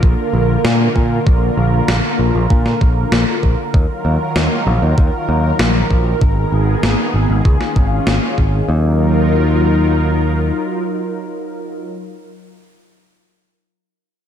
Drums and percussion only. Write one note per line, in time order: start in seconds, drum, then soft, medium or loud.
0.03 kick loud
0.65 snare loud
0.96 kick medium
1.27 kick loud
1.88 snare loud
2.50 kick loud
2.66 snare soft
2.81 kick medium
3.12 snare loud
3.43 kick medium
3.74 kick loud
4.36 snare loud
4.98 kick loud
5.59 snare loud
5.91 kick medium
6.21 kick loud
6.83 snare loud
7.45 kick loud
7.61 snare soft
7.76 kick medium
8.07 snare loud
8.38 kick medium